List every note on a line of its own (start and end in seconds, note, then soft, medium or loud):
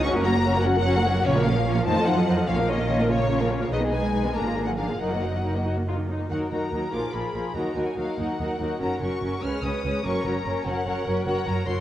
0.03 1.25 F#1 medium
0.03 0.14 F#3 medium
0.03 0.25 C#4 medium
0.03 0.14 C#4 medium
0.03 0.14 F#4 medium
0.03 0.14 C#5 medium
0.03 0.11 C#6 loud
0.15 0.25 A#3 medium
0.15 0.25 F#4 medium
0.15 0.25 A#4 medium
0.15 0.25 F#5 medium
0.24 0.35 F#3 medium
0.24 0.65 A#3 medium
0.24 0.35 C#4 medium
0.24 0.35 F#4 medium
0.24 0.35 C#5 medium
0.24 0.64 A#5 loud
0.36 0.45 A#3 medium
0.36 0.46 F#4 medium
0.36 0.46 A#4 medium
0.36 0.45 F#5 medium
0.46 0.55 F#3 medium
0.46 0.55 C#4 medium
0.46 0.55 F#4 medium
0.46 0.55 C#5 medium
0.56 0.66 A#3 medium
0.56 0.66 F#4 medium
0.56 0.65 A#4 medium
0.56 0.66 F#5 medium
0.64 1.24 F#3 medium
0.64 0.76 F#3 medium
0.64 0.75 C#4 medium
0.64 0.76 F#4 medium
0.64 0.76 C#5 medium
0.64 1.25 F#5 loud
0.76 0.86 A#3 medium
0.76 0.86 F#4 medium
0.76 0.85 A#4 medium
0.76 0.86 F#5 medium
0.86 0.95 F#3 medium
0.86 0.95 C#4 medium
0.86 0.95 F#4 medium
0.86 0.95 C#5 medium
0.96 1.06 A#3 medium
0.96 1.06 F#4 medium
0.96 1.06 A#4 medium
0.96 1.06 F#5 medium
1.06 1.16 F#3 medium
1.06 1.15 C#4 medium
1.06 1.16 F#4 medium
1.06 1.16 C#5 medium
1.16 1.24 A#3 medium
1.16 1.25 F#4 medium
1.16 1.26 A#4 medium
1.16 1.27 F#5 medium
1.25 1.85 A#1 medium
1.25 1.45 C#3 medium
1.25 1.34 A#3 medium
1.25 1.34 C#4 medium
1.25 1.35 F4 medium
1.25 1.45 C#5 loud
1.25 1.35 C#5 medium
1.35 1.45 F3 medium
1.35 1.45 A#3 medium
1.35 1.46 A#4 medium
1.35 1.46 F5 medium
1.43 1.86 F3 medium
1.43 1.54 A#3 medium
1.43 1.56 C#4 medium
1.43 1.56 F4 medium
1.43 1.56 C#5 medium
1.43 1.85 F5 medium
1.55 1.65 F3 medium
1.55 1.65 A#3 medium
1.55 1.66 A#4 medium
1.55 1.66 F5 medium
1.66 1.75 A#3 medium
1.66 1.75 C#4 medium
1.66 1.76 F4 medium
1.66 1.76 C#5 medium
1.77 1.86 F3 medium
1.77 1.86 A#3 medium
1.77 1.87 A#4 medium
1.77 1.87 F5 medium
1.85 2.46 F2 medium
1.85 1.96 D#3 medium
1.85 2.07 A3 medium
1.85 1.96 D#4 medium
1.85 1.96 F4 medium
1.85 1.96 C5 medium
1.85 2.06 A5 loud
1.97 2.07 F3 medium
1.97 2.07 F4 medium
1.97 2.07 A4 medium
1.97 2.07 D#5 medium
2.06 2.17 D#3 medium
2.06 2.47 F#3 medium
2.06 2.17 D#4 medium
2.06 2.17 F4 medium
2.06 2.17 C5 medium
2.06 2.48 F#5 loud
2.18 2.28 F3 medium
2.18 2.28 F4 medium
2.18 2.28 A4 medium
2.18 2.28 D#5 medium
2.27 2.37 D#3 medium
2.27 2.37 D#4 medium
2.27 2.37 F4 medium
2.27 2.37 C5 medium
2.38 2.48 F3 medium
2.38 2.48 F4 medium
2.38 2.48 A4 medium
2.38 2.48 D#5 medium
2.46 3.71 A#1 medium
2.46 2.68 F3 medium
2.46 2.57 A#3 medium
2.46 2.57 C#4 medium
2.46 2.57 F4 medium
2.46 2.58 C#5 medium
2.46 2.67 F5 medium
2.58 2.68 F3 medium
2.58 2.68 A#3 medium
2.58 2.68 A#4 medium
2.58 2.68 F5 medium
2.68 3.08 D#3 medium
2.68 2.78 A#3 medium
2.68 2.79 C#4 medium
2.68 2.79 F4 medium
2.68 2.79 C#5 medium
2.68 3.09 D#5 medium
2.79 2.89 F3 medium
2.79 2.87 A#3 medium
2.79 2.89 A#4 medium
2.79 2.89 F5 medium
2.88 2.98 A#3 medium
2.88 2.98 C#4 medium
2.88 2.99 F4 medium
2.88 2.99 C#5 medium
3.00 3.10 F3 medium
3.00 3.08 A#3 medium
3.00 3.10 A#4 medium
3.00 3.10 F5 medium
3.09 3.70 C#3 medium
3.09 3.18 A#3 medium
3.09 3.19 C#4 medium
3.09 3.20 F4 medium
3.09 3.70 C#5 medium
3.09 3.20 C#5 medium
3.19 3.29 F3 soft
3.19 3.27 A#3 soft
3.19 3.30 A#4 medium
3.19 3.30 F5 soft
3.29 3.39 A#3 medium
3.29 3.39 C#4 medium
3.29 3.39 F4 medium
3.29 3.39 C#5 medium
3.40 3.50 F3 soft
3.40 3.49 A#3 soft
3.40 3.50 A#4 medium
3.40 3.50 F5 medium
3.50 3.60 A#3 medium
3.50 3.61 C#4 medium
3.50 3.60 F4 soft
3.50 3.60 C#5 soft
3.61 3.71 F3 medium
3.61 3.71 A#3 soft
3.61 3.72 A#4 soft
3.61 3.72 F5 soft
3.71 4.33 B1 medium
3.71 3.79 D#3 medium
3.71 3.81 G#3 medium
3.71 3.81 D#4 medium
3.71 3.82 B4 medium
3.71 3.80 D#5 medium
3.81 3.92 D#3 soft
3.81 3.92 B3 soft
3.81 3.92 G#4 soft
3.81 3.92 D#5 soft
3.92 4.02 G#3 soft
3.92 4.34 G#3 medium
3.92 4.03 D#4 soft
3.92 4.03 B4 soft
3.92 4.34 G#5 medium
4.03 4.13 D#3 soft
4.03 4.13 B3 soft
4.03 4.14 G#4 soft
4.03 4.14 D#5 soft
4.12 4.23 G#3 soft
4.12 4.23 D#4 soft
4.12 4.23 B4 soft
4.24 4.35 D#3 soft
4.24 4.35 B3 soft
4.24 4.34 G#4 soft
4.24 4.35 D#5 soft
4.34 4.99 G#1 medium
4.34 4.44 D3 medium
4.34 4.67 A#3 medium
4.34 4.44 D4 soft
4.34 4.45 G#4 soft
4.34 4.45 A#4 soft
4.34 4.66 A#5 medium
4.46 4.56 F3 soft
4.46 4.56 A#3 soft
4.46 4.56 F4 soft
4.46 4.55 G#4 soft
4.56 4.67 D3 soft
4.56 4.67 D4 soft
4.56 4.66 G#4 soft
4.56 4.67 A#4 soft
4.65 4.77 F3 soft
4.65 4.71 F#3 medium
4.65 4.78 A#3 soft
4.65 4.78 F4 soft
4.65 4.76 G#4 soft
4.65 4.70 F#5 medium
4.77 4.88 D3 soft
4.77 4.86 F3 soft
4.77 4.88 D4 soft
4.77 4.87 G#4 soft
4.77 4.87 A#4 soft
4.77 4.99 F5 medium
4.88 5.00 F3 soft
4.88 5.00 A#3 soft
4.88 4.99 F4 soft
4.88 5.00 G#4 soft
4.98 6.07 F#1 soft
4.98 5.64 F#3 medium
4.98 5.10 F#3 soft
4.98 5.10 D#4 soft
4.98 5.10 A#4 soft
4.98 5.64 F#5 medium
5.12 5.22 D#3 soft
5.12 5.22 A#3 soft
5.12 5.22 F#4 soft
5.12 5.22 D#5 soft
5.22 5.33 F#3 soft
5.22 5.32 D#4 soft
5.22 5.33 D#4 soft
5.22 5.33 A#4 soft
5.34 5.44 D#3 soft
5.34 5.44 A#3 soft
5.34 5.44 F#4 soft
5.34 5.44 D#5 soft
5.44 5.53 F#3 soft
5.44 5.53 D#4 soft
5.44 5.54 D#4 soft
5.44 5.54 A#4 soft
5.55 5.65 D#3 soft
5.55 5.66 A#3 soft
5.55 5.66 F#4 soft
5.55 5.66 D#5 soft
5.65 5.76 F#3 soft
5.65 5.76 D#4 soft
5.65 5.76 F#4 medium
5.77 5.87 D#3 soft
5.77 5.87 A#3 soft
5.87 5.97 F#3 soft
5.87 5.97 D#4 soft
5.87 5.97 F4 medium
5.98 6.09 D#3 soft
5.98 6.09 A#3 soft
6.09 6.19 F#3 soft
6.09 6.19 D#4 soft
6.09 6.30 D#4 soft
6.19 6.30 D#3 soft
6.19 6.30 A#3 soft
6.30 6.38 D#2 soft
6.30 6.50 F#3 soft
6.30 6.50 D#4 soft
6.30 6.51 F#4 soft
6.30 6.51 A#4 soft
6.30 6.38 F#5 medium
6.50 6.59 D#2 soft
6.50 6.60 D#2 soft
6.50 6.72 F#3 soft
6.50 6.71 D#4 soft
6.50 6.72 F#4 soft
6.50 6.72 A#4 soft
6.50 6.92 A#5 medium
6.72 6.80 D#2 soft
6.72 6.81 D#2 soft
6.72 6.93 F#3 soft
6.72 6.93 D#4 soft
6.72 6.93 F#4 soft
6.72 6.92 A#4 soft
6.92 7.01 A#1 soft
6.92 7.00 A#2 soft
6.92 7.13 F3 soft
6.92 7.13 F4 soft
6.92 7.13 G#4 soft
6.92 7.13 A#4 soft
6.92 7.14 D6 medium
7.13 7.22 A#1 soft
7.13 7.21 A#2 soft
7.13 7.33 F3 soft
7.13 7.33 F4 soft
7.13 7.34 G#4 soft
7.13 7.34 A#4 soft
7.13 7.55 B5 medium
7.33 7.42 A#1 soft
7.33 7.41 A#2 soft
7.33 7.54 F3 soft
7.33 7.55 F4 soft
7.33 7.55 G#4 soft
7.33 7.55 A#4 soft
7.54 7.62 D#2 soft
7.54 7.63 D#2 soft
7.54 7.75 F#3 soft
7.54 7.75 D#4 soft
7.54 7.75 F#4 soft
7.54 7.75 A#4 soft
7.54 7.76 A#5 medium
7.75 7.83 D#2 soft
7.75 7.84 D#2 soft
7.75 7.96 F#3 soft
7.75 7.97 D#4 soft
7.75 7.96 F#4 soft
7.75 7.97 A#4 soft
7.75 7.97 G#5 medium
7.96 8.04 D#2 soft
7.96 8.05 D#2 soft
7.96 8.18 F#3 soft
7.96 8.18 D#4 soft
7.96 8.18 F#4 soft
7.96 8.17 A#4 soft
7.96 8.18 F5 medium
8.17 8.25 D#2 soft
8.17 8.26 D#2 soft
8.17 8.38 F#3 soft
8.17 8.39 D#4 soft
8.17 8.38 F#4 soft
8.17 8.39 A#4 soft
8.17 8.80 F#5 medium
8.39 8.47 D#2 soft
8.39 8.59 F#3 soft
8.39 8.58 D#4 soft
8.39 8.60 F#4 soft
8.39 8.59 A#4 soft
8.60 8.68 D#2 soft
8.60 8.79 F#3 soft
8.60 8.80 D#4 soft
8.60 8.80 F#4 soft
8.60 8.80 A#4 soft
8.80 8.89 F#1 soft
8.80 8.89 F#2 soft
8.80 8.99 F#3 soft
8.80 9.00 C#4 soft
8.80 9.01 F#4 soft
8.80 9.01 A#4 soft
8.80 9.01 A#5 medium
9.01 9.09 F#1 soft
9.01 9.09 F#2 soft
9.01 9.21 F#3 soft
9.01 9.21 C#4 soft
9.01 9.22 F#4 soft
9.01 9.22 A#4 soft
9.01 9.42 C#6 medium
9.21 9.29 F#1 soft
9.21 9.30 F#2 soft
9.21 9.43 F#3 soft
9.21 9.41 C#4 soft
9.21 9.43 F#4 soft
9.21 9.43 A#4 soft
9.42 9.50 C#2 soft
9.42 9.51 C#2 medium
9.42 9.62 G#3 soft
9.42 9.62 C#4 soft
9.42 9.64 B4 soft
9.42 9.64 C#5 soft
9.42 9.63 F6 medium
9.63 9.71 C#2 soft
9.63 9.72 C#2 soft
9.63 9.84 G#3 soft
9.63 9.83 C#4 soft
9.63 9.84 B4 soft
9.63 9.84 C#5 soft
9.63 10.04 D#6 medium
9.84 9.92 C#2 soft
9.84 10.04 G#3 soft
9.84 10.04 C#4 soft
9.84 10.05 B4 soft
9.84 10.04 C#5 soft
10.04 10.12 F#1 medium
10.04 10.13 F#2 medium
10.04 10.24 F#3 medium
10.04 10.24 C#4 medium
10.04 10.24 A#4 soft
10.04 10.24 C#5 medium
10.04 10.25 C#6 medium
10.23 10.32 F#1 medium
10.23 10.33 F#2 medium
10.23 10.45 F#3 soft
10.23 10.45 C#4 soft
10.23 10.45 A#4 soft
10.23 10.45 C#5 soft
10.23 10.64 A#5 medium
10.45 10.53 F#1 medium
10.45 10.54 F#2 medium
10.45 10.64 F#3 soft
10.45 10.64 C#4 soft
10.45 10.66 A#4 soft
10.45 10.66 C#5 soft
10.65 10.73 F#1 medium
10.65 10.73 F#2 medium
10.65 10.85 F#3 medium
10.65 10.85 C#4 medium
10.65 10.86 A#4 medium
10.65 10.86 C#5 soft
10.65 11.23 F#5 medium
10.86 10.94 F#1 soft
10.86 10.94 F#2 medium
10.86 11.06 F#3 soft
10.86 11.06 C#4 soft
10.86 11.06 A#4 medium
10.86 11.06 C#5 medium
11.06 11.14 F#1 medium
11.06 11.14 F#2 medium
11.06 11.26 F#3 medium
11.06 11.26 C#4 medium
11.06 11.26 A#4 soft
11.06 11.26 C#5 soft
11.24 11.34 F#1 medium
11.24 11.35 F#2 medium
11.24 11.46 F#3 medium
11.24 11.46 F#4 medium
11.24 11.46 A#4 medium
11.24 11.46 C#5 medium
11.24 11.45 F#5 medium
11.46 11.55 F#1 medium
11.46 11.55 F#2 medium
11.46 11.67 F#3 soft
11.46 11.67 F#4 soft
11.46 11.66 A#4 soft
11.46 11.66 C#5 medium
11.46 11.67 A#5 medium
11.67 11.75 F#1 medium
11.67 11.75 F#2 medium
11.67 11.80 F#3 soft
11.67 11.80 F#4 medium
11.67 11.80 A#4 medium
11.67 11.80 C#5 soft
11.67 11.80 C6 medium